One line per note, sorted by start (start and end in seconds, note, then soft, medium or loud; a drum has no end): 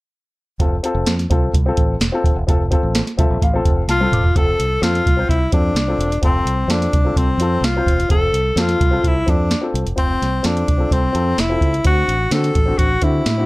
0.60 0.78 F1 loud
0.60 0.74 C4 medium
0.60 0.74 F4 medium
0.60 0.74 A4 medium
0.60 kick loud
0.60 closed hi-hat medium
0.83 1.11 C4 medium
0.83 1.12 F4 medium
0.83 1.12 A4 medium
0.83 closed hi-hat medium
0.95 1.04 F1 medium
1.06 1.25 F2 medium
1.06 snare loud
1.06 closed hi-hat medium
1.19 snare soft
1.19 closed hi-hat soft
1.30 1.48 C2 medium
1.30 1.51 C4 medium
1.30 1.52 F4 medium
1.30 1.52 A4 medium
1.30 kick medium
1.30 closed hi-hat medium
1.54 1.71 C2 loud
1.54 kick medium
1.54 closed hi-hat medium
1.66 1.93 C4 medium
1.66 1.94 F4 medium
1.66 1.95 A4 medium
1.77 1.95 A1 medium
1.77 kick medium
1.77 closed hi-hat medium
2.00 2.10 E1 medium
2.00 snare loud
2.00 closed hi-hat medium
2.12 2.33 C4 medium
2.12 2.34 F4 medium
2.12 2.34 A4 medium
2.24 2.33 D#1 medium
2.24 kick medium
2.24 closed hi-hat medium
2.36 2.45 E1 medium
2.47 2.74 F1 loud
2.47 2.61 C4 medium
2.47 2.62 F4 medium
2.47 2.62 A4 medium
2.47 kick loud
2.47 closed hi-hat medium
2.71 2.99 C4 medium
2.71 2.99 F4 medium
2.71 3.00 A4 medium
2.71 kick medium
2.71 closed hi-hat medium
2.83 3.01 A1 medium
2.95 snare loud
2.95 closed hi-hat loud
3.07 snare soft
3.07 closed hi-hat soft
3.17 3.27 C2 medium
3.17 3.39 C4 medium
3.17 3.39 F4 medium
3.17 3.40 A4 medium
3.17 3.40 E5 medium
3.17 kick medium
3.17 closed hi-hat medium
3.30 3.39 A#1 medium
3.42 3.59 A1 medium
3.42 3.86 F5 medium
3.42 kick medium
3.42 closed hi-hat medium
3.54 3.81 C4 medium
3.54 3.82 F4 medium
3.54 3.82 A4 medium
3.65 3.83 F1 medium
3.65 kick medium
3.65 closed hi-hat medium
3.88 4.06 C2 medium
3.88 4.38 F4 medium
3.88 4.11 A5 medium
3.88 snare soft
3.88 closed hi-hat medium
4.00 4.21 C4 medium
4.00 4.22 F4 medium
4.00 4.22 A4 medium
4.00 high tom medium
4.12 4.29 E1 medium
4.12 4.34 D6 medium
4.12 closed hi-hat medium
4.12 mid tom medium
4.24 floor tom medium
4.35 4.53 F1 loud
4.35 4.63 C4 medium
4.35 4.64 F4 medium
4.35 4.85 A4 loud
4.35 4.64 A4 medium
4.35 kick medium
4.35 closed hi-hat medium
4.59 4.77 C2 medium
4.59 closed hi-hat medium
4.81 5.00 F2 medium
4.81 5.03 C4 medium
4.81 5.03 F4 medium
4.81 5.30 F4 medium
4.81 5.04 A4 medium
4.81 snare loud
4.81 closed hi-hat medium
4.95 snare soft
4.95 closed hi-hat soft
5.06 5.24 C2 medium
5.06 kick medium
5.06 closed hi-hat medium
5.17 5.38 C4 medium
5.17 5.38 F4 medium
5.17 5.39 C5 medium
5.29 5.47 C2 medium
5.29 5.53 E4 medium
5.29 kick medium
5.29 closed hi-hat medium
5.52 5.70 F2 medium
5.52 5.73 C4 medium
5.52 6.20 D4 medium
5.52 5.74 F4 medium
5.52 5.74 A4 medium
5.52 kick medium
5.52 closed hi-hat medium
5.75 5.93 C2 medium
5.75 snare medium
5.75 closed hi-hat medium
5.88 6.09 C4 medium
5.88 6.09 F4 medium
5.88 6.09 A4 medium
5.98 6.17 E1 medium
5.98 closed hi-hat medium
6.12 closed hi-hat soft
6.22 6.40 F1 loud
6.22 6.50 C4 medium
6.22 6.73 C4 medium
6.22 6.51 F4 medium
6.22 6.51 A4 medium
6.22 kick loud
6.22 closed hi-hat medium
6.45 6.63 C2 medium
6.45 closed hi-hat medium
6.68 6.86 F2 medium
6.68 6.90 C4 medium
6.68 7.19 D4 medium
6.68 6.90 F4 medium
6.68 6.91 A4 medium
6.68 snare loud
6.68 closed hi-hat medium
6.82 snare soft
6.82 closed hi-hat soft
6.93 7.11 C2 medium
6.93 kick loud
6.93 closed hi-hat medium
7.05 7.25 C4 medium
7.05 7.26 F4 medium
7.05 7.26 A4 medium
7.16 7.34 C2 medium
7.16 7.66 C4 medium
7.16 kick medium
7.16 closed hi-hat medium
7.38 7.56 F2 medium
7.38 7.61 C4 medium
7.38 7.61 F4 medium
7.38 closed hi-hat medium
7.42 7.62 A4 medium
7.61 7.80 C2 medium
7.61 8.10 F4 medium
7.61 snare medium
7.61 closed hi-hat medium
7.76 7.97 C4 medium
7.76 7.97 F4 medium
7.76 7.97 C5 medium
7.86 8.04 E1 medium
7.86 kick medium
7.86 closed hi-hat medium
8.00 closed hi-hat soft
8.09 8.28 F1 loud
8.09 8.37 C4 medium
8.09 8.38 F4 medium
8.09 8.62 A4 medium
8.09 8.38 A4 medium
8.09 kick loud
8.09 closed hi-hat medium
8.32 8.51 C2 medium
8.32 closed hi-hat medium
8.56 8.74 F2 loud
8.56 8.77 C4 medium
8.56 8.78 F4 medium
8.56 8.78 A4 medium
8.56 snare loud
8.56 closed hi-hat loud
8.61 9.08 F4 medium
8.69 snare soft
8.69 closed hi-hat soft
8.81 8.98 C2 medium
8.81 kick loud
8.81 closed hi-hat medium
8.91 9.12 C4 medium
8.91 9.13 F4 medium
8.91 9.13 A4 medium
9.04 9.22 C2 medium
9.04 9.31 E4 medium
9.04 kick medium
9.04 closed hi-hat medium
9.26 9.54 F2 medium
9.26 9.48 C4 medium
9.26 9.72 D4 medium
9.26 9.48 F4 medium
9.26 9.49 A4 medium
9.26 kick medium
9.26 closed hi-hat medium
9.51 snare medium
9.51 closed hi-hat medium
9.61 9.83 C4 medium
9.61 9.83 F4 medium
9.61 9.84 A4 medium
9.74 9.83 C2 medium
9.74 closed hi-hat medium
9.86 9.95 F1 medium
9.86 closed hi-hat soft
9.96 10.15 F1 medium
9.96 10.24 C4 medium
9.96 10.48 C4 medium
9.96 10.25 F4 medium
9.96 10.25 C5 medium
9.96 kick loud
9.96 closed hi-hat medium
10.22 10.39 C2 medium
10.22 snare soft
10.22 closed hi-hat medium
10.43 10.62 F2 medium
10.43 10.64 C4 medium
10.43 10.94 D4 medium
10.43 10.65 F4 medium
10.43 10.66 A4 medium
10.43 snare loud
10.43 closed hi-hat loud
10.57 closed hi-hat soft
10.68 10.86 C2 medium
10.68 kick medium
10.68 closed hi-hat medium
10.78 10.99 C4 medium
10.78 11.00 F4 medium
10.78 11.01 A4 medium
10.91 11.09 C2 medium
10.91 11.41 C4 medium
10.91 kick medium
10.91 closed hi-hat medium
11.13 11.32 F2 medium
11.13 11.34 C4 medium
11.13 11.35 F4 medium
11.13 11.36 A4 medium
11.13 closed hi-hat medium
11.38 11.56 F1 medium
11.38 11.86 E4 medium
11.38 snare loud
11.38 closed hi-hat medium
11.49 11.70 C4 medium
11.49 11.71 F4 medium
11.49 11.71 A4 medium
11.61 11.79 C#2 medium
11.61 kick medium
11.61 closed hi-hat medium
11.74 closed hi-hat soft
11.84 12.02 D2 medium
11.84 12.12 C4 medium
11.84 12.13 D4 medium
11.84 12.34 F#4 loud
11.84 12.14 F#4 medium
11.84 kick loud
11.84 closed hi-hat medium
12.08 12.26 A1 medium
12.08 closed hi-hat medium
12.31 12.49 D3 medium
12.31 12.53 C4 medium
12.31 12.53 D4 medium
12.31 12.54 F#4 medium
12.31 12.80 A4 loud
12.31 snare loud
12.31 closed hi-hat medium
12.44 snare soft
12.44 closed hi-hat soft
12.55 12.73 A1 medium
12.55 kick medium
12.55 closed hi-hat medium
12.66 12.87 C4 medium
12.66 12.88 D4 medium
12.66 12.88 F#4 medium
12.78 12.96 A1 medium
12.78 13.05 F#4 medium
12.78 kick medium
12.78 closed hi-hat medium
13.02 13.20 D3 medium
13.02 13.23 C4 medium
13.02 13.23 D4 medium
13.02 13.46 E4 medium
13.02 13.24 F#4 medium
13.02 kick medium
13.02 closed hi-hat medium
13.26 13.43 A2 medium
13.26 snare medium
13.26 closed hi-hat medium
13.38 13.46 C4 medium
13.38 13.46 D4 medium
13.38 13.46 F#4 medium